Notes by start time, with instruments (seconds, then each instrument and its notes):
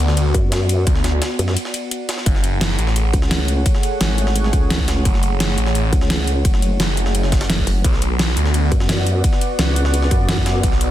Already playing: analog synth pad B3 F#4 D5 F#5
0.00 detuned saw bass D2
0.08 snare
0.17 closed hi-hat, ride
0.34 wobble bass F#2, kick, closed hi-hat
0.52 snare, closed hi-hat, ride
0.69 closed hi-hat, ride
0.87 detuned saw bass D2, kick, closed hi-hat, ride
0.95 snare
1.04 snare, closed hi-hat, ride
1.22 snare, closed hi-hat, ride
1.39 wobble bass F#2, closed hi-hat, ride
1.48 snare
1.57 closed hi-hat, ride
1.65 snare
1.74 closed hi-hat, ride
1.91 closed hi-hat, ride
2.09 snare, closed hi-hat, ride
2.18 snare
2.26 detuned saw bass F#1, analog synth pad A3 G#4 C#5 F#5, kick, closed hi-hat, ride
2.35 snare
2.44 closed hi-hat, ride
2.61 snare, closed hi-hat, ride
2.70 snare
2.79 detuned saw bass A1, closed hi-hat, ride
2.87 snare
2.96 closed hi-hat, ride
3.13 wobble bass C#2, kick, closed hi-hat, ride
3.22 snare
3.31 snare, closed hi-hat, ride
3.48 closed hi-hat, ride
3.66 kick, closed hi-hat, ride
3.75 snare
3.83 closed hi-hat, ride
4.01 wobble bass G#1, snare, closed hi-hat, ride
4.18 closed hi-hat, ride
4.27 snare
4.36 closed hi-hat, ride
4.44 snare
4.53 wobble bass C#2, kick, closed hi-hat, ride
4.70 snare, closed hi-hat, ride
4.79 kick
4.88 snare, closed hi-hat, ride
5.05 detuned saw bass F#1, kick, closed hi-hat, ride
5.14 snare
5.23 closed hi-hat, ride
5.40 snare, closed hi-hat, ride
5.49 snare
5.58 detuned saw bass A1, closed hi-hat, ride
5.66 snare
5.75 closed hi-hat, ride
5.93 wobble bass C#2, kick, closed hi-hat, ride
6.01 snare
6.10 snare, closed hi-hat, ride
6.27 closed hi-hat, ride
6.45 wobble bass F#1, kick, closed hi-hat, ride
6.54 snare
6.62 closed hi-hat, ride
6.80 detuned saw bass F#1, snare, closed hi-hat, ride
6.97 closed hi-hat, ride
7.06 snare
7.15 closed hi-hat, ride
7.23 snare
7.32 kick, snare, closed hi-hat, ride
7.41 snare, ride
7.50 snare, closed hi-hat, ride
7.58 kick
7.67 wobble bass F#1, closed hi-hat, open hi-hat
7.84 detuned saw bass B1, analog synth pad B3 F#4 D5 F#5, kick, closed hi-hat, ride
7.93 snare
8.02 closed hi-hat, ride
8.19 snare, closed hi-hat, ride
8.28 snare
8.37 detuned saw bass D2, closed hi-hat, ride
8.46 snare
8.54 closed hi-hat, ride
8.72 wobble bass F#2, kick, closed hi-hat, ride
8.80 snare
8.89 snare, closed hi-hat, ride
9.07 closed hi-hat, ride
9.24 kick, closed hi-hat, ride
9.33 snare
9.41 closed hi-hat, ride
9.59 wobble bass C#2, snare, closed hi-hat, ride
9.76 closed hi-hat, ride
9.85 snare
9.94 closed hi-hat, ride
10.02 snare
10.11 wobble bass F#2, kick, closed hi-hat, ride
10.29 snare, closed hi-hat, ride
10.37 kick
10.46 snare, closed hi-hat, ride
10.63 detuned saw bass B1, kick, closed hi-hat, ride
10.72 snare
10.81 closed hi-hat, ride